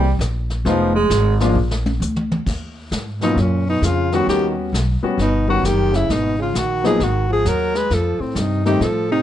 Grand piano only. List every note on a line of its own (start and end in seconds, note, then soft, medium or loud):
0.66 0.92 F3 medium
0.66 0.92 G#3 medium
0.66 0.93 B3 medium
0.66 0.93 D#4 medium
0.66 0.93 F4 medium
1.41 1.55 F3 medium
1.41 1.55 G#3 medium
1.41 1.55 A#3 medium
1.41 1.55 D4 medium
1.41 1.55 F4 medium
3.23 3.37 F#3 medium
3.23 3.37 A#3 medium
3.23 3.37 C#4 medium
3.23 3.37 F4 medium
4.13 4.71 G3 medium
4.13 4.71 B3 medium
4.13 4.71 C#4 medium
4.13 4.71 F#4 medium
5.03 5.17 G3 medium
5.03 5.17 B3 medium
5.03 5.17 C#4 medium
5.03 5.18 F#4 medium
5.48 5.62 G3 medium
5.48 5.63 B3 medium
5.48 5.63 C#4 medium
5.48 5.63 F#4 medium
6.84 6.98 F#3 medium
6.84 6.99 A#3 medium
6.84 6.99 B3 medium
6.84 6.99 D#4 medium
8.66 8.80 G3 medium
8.66 8.80 A3 medium
8.66 8.80 C4 medium
8.66 8.80 D#4 medium